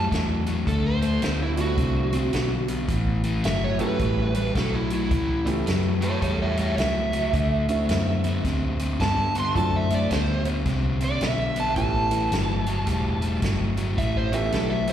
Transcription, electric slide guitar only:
0.68 A4
0.86 C5
1.42 E4
1.61 F#4
3.45 E5
3.64 C#5
3.81 B4
4.37 B4
4.57 A4
4.75 E4
4.94 E4
6.03 A4 C#5
6.22 A4 C#5
6.42 C#5 E5
6.60 C#5 E5
6.79 E5
9.01 A5
9.39 C6
9.57 A5
9.76 E5
9.95 D5
10.14 C5
11.04 D5
11.22 E5
11.60 A5
11.77 A5
13.98 E5
14.17 C5
14.34 E5
14.52 A4
14.70 E5
14.90 C5

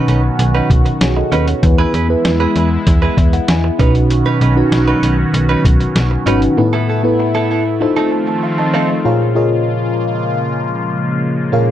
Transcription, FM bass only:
0.08 B1
0.39 B1
0.70 B1
1.01 B1
1.32 D#2
1.63 E2
1.94 E2
2.25 E2
2.56 E2
2.87 E2
3.17 E2
3.49 E2
3.79 B1
4.41 B1
4.72 B1
5.03 B1
5.34 B1
5.65 B1
5.96 B1
6.26 G#1

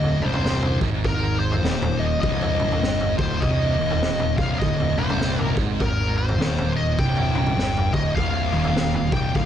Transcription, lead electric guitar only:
Already playing: D#5
0.22 C5
1.05 A#4
1.39 C5
1.52 C5
1.99 D#5
2.21 D#5
3.18 C5
3.37 C5 D#5
4.38 F5
4.59 D#5
4.99 C5
5.41 A#4
5.80 A#4
6.18 C5
6.76 D#5
6.99 G5
7.93 D#5
8.16 F5
9.12 G5
9.35 F5

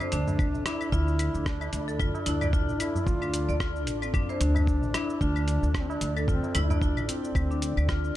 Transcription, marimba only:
0.01 C5
0.12 D4
0.66 D4
0.92 F4
1.88 A4
1.99 F4
2.26 E4
2.42 D5
2.53 F4
3.22 D4
3.49 D5
3.60 F4
4.02 C4
4.14 D4
4.29 C5
4.41 D4
4.94 D4
5.21 F4
6.17 A4
6.28 F4
6.55 E4
6.70 D5
6.82 F4
7.51 D4
7.77 D5
7.89 F4

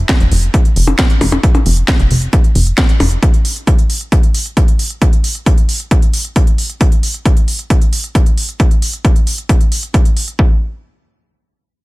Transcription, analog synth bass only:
0.20 F1
0.31 F1
0.76 F1
1.21 F1
1.66 F1
1.99 F1
2.11 F1
2.55 F1
3.00 F1

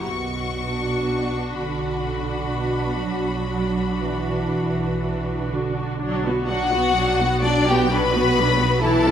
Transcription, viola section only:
0.56 D4 F#4
2.05 D4 F#4
3.52 D4 F#4
5.01 D4 F#4
6.01 F#3 D4
6.25 B3 F#4
6.49 F#3 D4
6.72 B3 F#4
6.96 F#3 D4
7.21 B3 F#4
7.45 F#3 D4
7.69 B3 F#4
7.92 F#3 D4
8.15 B3 F#4
8.38 F#3 D4
8.60 B3 F#4
8.83 E3 E4
9.06 G3 C#4

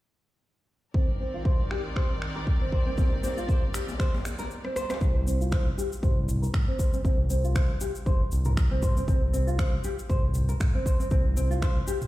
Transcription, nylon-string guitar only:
0.94 C4
1.20 C4
1.34 F4
1.45 C5
1.71 G4
1.96 C5
2.36 A#4
2.61 C4
2.72 C5
2.86 C4
2.98 C4
3.23 C4
3.37 F4
3.49 C5
3.74 G4
4.00 C5
4.39 A#4
4.64 C4
4.76 C5
4.90 C4
5.01 C4
5.27 C4
5.41 F4
5.52 C5
5.78 G4
6.03 C5
6.42 A#4
6.68 C4
6.79 C5
6.93 C4
7.05 C4
7.30 C4
7.44 F4
7.55 C5
7.81 G4
8.06 C5
8.46 A#4
8.71 C4
8.83 C5
8.96 C4
9.08 C4
9.33 C4
9.47 F4
9.58 C5
9.84 G4
10.09 C5
10.49 A#4
10.74 C4
10.86 C5
10.99 C4
11.11 C4
11.37 C4
11.51 F4
11.62 C5
11.87 G4

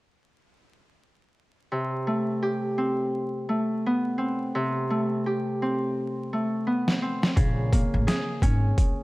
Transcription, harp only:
1.72 C3
2.07 A3
2.42 G4
2.78 C4
3.49 A3
3.86 B3
4.18 C4
4.55 C3
4.90 A3
5.26 G4
5.62 C4
6.33 A3
6.67 B3
7.02 C4
7.36 C#3
7.72 A#3
8.07 G#4
8.42 C#4

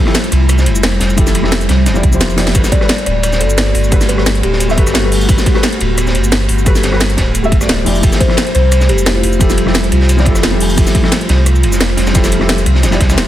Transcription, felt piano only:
0.05 F3 E4 G4 A4
1.16 F3 E4 G4 A4
1.43 F3 E4 G4 A4
1.94 F3 E4 G4 D5
2.11 F3 E4 G4 C5
2.36 F3 E4 G4 D5
2.54 G3 F#4 A4 B4
2.80 G3 F#4 A4 B4
3.91 G3 F#4 A4 B4
4.17 G3 F#4 A4 B4
4.68 G3 F#4 A4 E5
4.76 G3 F#4 A4 B4
5.02 G3 F#4 A4 B4
5.28 G3 F#4 A4 B4
5.54 G3 F#4 A4 B4
6.65 G3 F#4 A4 B4
6.91 G3 F#4 A4 B4
7.43 G3 F#4 A4 E5
7.60 G3 F#4 A4 D5
7.85 F3 E4 G4 D5
8.02 F3 E4 G4 A4
8.28 F3 E4 G4 A4
9.39 F3 E4 G4 A4
9.65 F3 E4 G4 A4
10.17 F3 E4 G4 D5
10.25 F3 E4 G4 A4
10.51 F3 E4 G4 A4
10.76 F3 E4 G4 A4
11.03 F3 E4 G4 A4
12.14 F3 E4 G4 A4
12.40 F3 E4 G4 A4
12.91 F3 E4 G4 D5
13.08 F3 E4 G4 C5

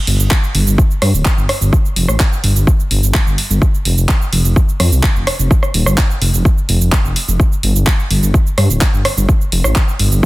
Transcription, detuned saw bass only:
0.07 G1
0.19 G1
0.55 G1
0.67 G1
1.02 G2
1.14 D1
1.38 G1
1.61 G1
1.96 F1
2.08 A1
2.44 G1
2.56 G1
2.91 G1
3.03 G1
3.27 G1
3.50 G1
3.85 F1
3.97 F1
4.33 F1
4.45 F1
4.80 F2
4.92 C2
5.16 F1
5.39 F1
5.74 D#1
5.86 G1
6.22 F1
6.34 F1
6.69 F1
6.81 F1
7.05 F1
7.28 F1
7.63 G1
7.75 G1
8.11 G1
8.23 G1
8.58 G2
8.70 D1
8.93 G1
9.17 G1
9.52 F1
9.64 A1
9.99 G1
10.12 G1

